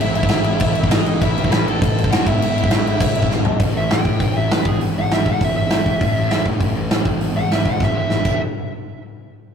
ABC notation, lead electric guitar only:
X:1
M:4/4
L:1/8
Q:1/4=200
K:E
V:1 name="Lead electric guitar"
[Ee] [Ee]4- [Ee] [Dd]2 | [Ee]2 [Bb] [Aa]3 [Ff] [Ee]- | [Ee]6 z2 | z e =g3 e B ^G |
z f e f e e3- | e3 z4 z | z f e f e e3 | z8 |]